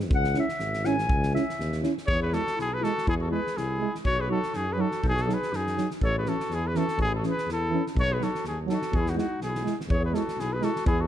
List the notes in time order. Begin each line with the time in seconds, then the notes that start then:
Already playing: G#2
0.00 snare
0.10 C#2, kick
0.15 F#5
0.24 snare
0.34 C#4 E4, snare
0.40 E5
0.49 snare
0.60 G#1, snare
0.74 snare
0.84 C#4 E4 G#5, snare
0.98 snare
1.09 C#2, kick
1.23 snare
1.33 C#4 E4 E5, snare
1.50 snare
1.59 D#2, snare
1.72 snare
1.82 C#4 E4, snare
1.98 snare
2.07 E2 G#4 C#5, kick
2.22 G#4 B4
2.31 G#3 E4 F#4 A4, snare
2.47 snare
2.56 B1 E4, snare
2.61 G#4
2.71 G#4 B4
2.79 G#3 E4 A4
2.84 F#4, snare
2.98 snare
3.07 E2 E4 G#4, kick
3.20 F#4 A4
3.29 G#3 E4 G#4 B4
3.47 snare
3.57 C2 E4 G#4, snare
3.79 G#3 E4
3.95 snare
4.05 B1 F#4 C#5, kick
4.19 G#4 B4
4.29 F#3 D#4 F#4 A4
4.43 snare
4.54 F#2 D#4 G#4, snare
4.67 G#4
4.73 F#3 B4
4.79 D#4 F#4 A4
4.92 snare
5.03 B1 D#4, kick
5.08 G#4
5.15 F#4, snare
5.22 A4
5.26 F#3 D#4 G#4, snare
5.34 B4
5.42 snare
5.52 F#2 D#4, snare
5.56 G#4
5.67 snare
5.76 F#3 D#4, snare
5.91 snare
6.01 A1 A4 C#5, kick
6.18 G#4 B4
6.25 E3 C#4 F#4 A4, snare
6.40 snare
6.49 E2, snare
6.54 E4 G#4
6.67 G#4 B4
6.75 E3 C#4 F#4 A4, snare
6.88 snare
6.97 A1, kick
7.01 E4 G#4
7.15 F#4 A4
7.23 E3 C#4, snare
7.27 G#4 B4
7.38 snare
7.46 E2, snare
7.52 E4 A4
7.69 E3 C#4
7.87 snare
7.95 B1, kick
7.99 F#4 C#5
8.12 G#4 B4
8.17 F#3 D#4
8.22 F#4 A4, snare
8.35 snare
8.44 D#2 D#4 G#4, snare
8.66 F#3 D#4 A4, snare
8.73 F#4
8.82 snare
8.92 E2 G#4, kick
8.99 E4
9.07 F#4, snare
9.11 D#4
9.15 G#3 E4 F#4, snare
9.21 D#4
9.40 B1 G#4, snare
9.47 E4
9.55 snare
9.63 G#3 E4, snare
9.81 snare
9.88 E2 C#5, kick
9.94 G#4
10.03 G#4 B4
10.12 G#3 E4 A4, snare
10.17 F#4
10.28 snare
10.37 B1 E4 G#4, snare
10.53 G#4 B4
10.60 G#3 E4 A4, snare
10.64 F#4
10.76 snare
10.85 E2 E4 G#4, kick
11.01 F#4 A4